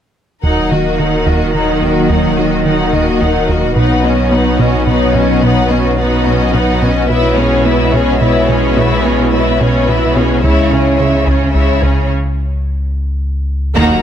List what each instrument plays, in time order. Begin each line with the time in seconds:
0.43 sub bass D#1, analog synth bass D#2, cello section D#3, analog synth pad F#3 A#3 D#4 D#5, viola section F#3 D#4, violin section A#4 F#5
0.71 analog synth bass D#3, viola section A#3 F#4, violin section F#4 D#5
0.99 analog synth bass D#3, viola section F#3 D#4, violin section A#4 F#5
1.27 analog synth bass D#2, viola section A#3 F#4, violin section F#4 D#5
1.54 analog synth bass D#2, viola section F#3 D#4, violin section A#4 F#5
1.82 analog synth bass D#2, viola section A#3 F#4, violin section F#4 D#5
2.10 analog synth bass D#2, viola section F#3 D#4, violin section A#4 F#5
2.38 analog synth bass D#3, viola section A#3 F#4, violin section F#4 D#5
2.65 analog synth bass D#3, viola section F#3 D#4, violin section A#4 F#5
2.93 analog synth bass D#2, viola section A#3 F#4, violin section F#4 D#5
3.20 analog synth bass D#2, viola section F#3 D#4, violin section A#4 F#5
3.48 analog synth bass D#2, viola section A#3 F#4, violin section F#4 D#5
3.76 sub bass B1, cello section B2, analog synth bass B2, analog synth pad F#3 B3 D#4 C#5, viola section B3 D#4, violin section B4 F#5
4.04 analog synth bass B3, viola section B3 C#4, violin section F#4 D#5
4.31 viola section B3 D#4, analog synth bass B3, violin section B4 F#5
4.59 analog synth bass B2, viola section B3 C#4, violin section F#4 D#5
4.87 analog synth bass B2, viola section B3 D#4, violin section B4 F#5
5.14 analog synth bass B2, viola section B3 C#4, violin section F#4 D#5
5.43 analog synth bass B2, viola section B3 D#4, violin section B4 F#5
5.70 analog synth bass B3, viola section B3 C#4, violin section F#4 D#5
5.98 analog synth bass B3, viola section B3 D#4, violin section B4 F#5
6.25 analog synth bass B2, viola section B3 C#4, violin section F#4 D#5
6.53 analog synth bass B2, viola section B3 D#4, violin section B4 F#5
6.82 analog synth bass B2, viola section B3 C#4, violin section F#4 D#5
7.09 sub bass B1, analog synth bass B2, cello section B2, analog synth pad G#3 B3 E4 C#5, viola section B3 E4, violin section B4 E5
7.37 analog synth bass B3, viola section B3 C#4, violin section G#4 C#5
7.65 analog synth bass B3, viola section B3 E4, violin section B4 E5
7.92 analog synth bass B2, viola section B3 C#4, violin section G#4 C#5
8.20 analog synth bass B2, viola section B3 E4, violin section B4 E5
8.48 analog synth bass B2, viola section B3 C#4, violin section G#4 C#5
8.76 analog synth bass B2, viola section B3 E4, violin section B4 E5
9.04 analog synth bass B3, viola section B3 C#4, violin section G#4 C#5
9.32 analog synth bass B3, viola section B3 E4, violin section B4 E5
9.60 analog synth bass B2, viola section B3 C#4, violin section G#4 C#5
9.88 analog synth bass B2, viola section B3 E4, violin section B4 E5
10.15 analog synth bass B2, viola section B3 C#4, violin section G#4 C#5
10.42 sub bass C#2, analog synth bass C#2, cello section C#3, analog synth pad G#3 C#4 E4 C#5, viola section G#3 E4, violin section C#5 E5
10.71 analog synth bass C#3, viola section C#4, violin section G#4 C#5
10.99 analog synth bass C#3, viola section G#3 E4, violin section C#5 E5
11.27 analog synth bass C#2, viola section C#4, violin section G#4 C#5
11.54 analog synth bass C#2, viola section G#3 E4, violin section C#5 E5
11.82 analog synth bass C#2, viola section C#4, violin section G#4 C#5
13.76 sub bass D#1, double bass section D#2, tuba D#2, analog synth bass D#2, cello section D#3, analog synth pad F#3 D#4 F#4 A#4, viola section A#3 D#4, violin section F#4 F#5 A#5, taiko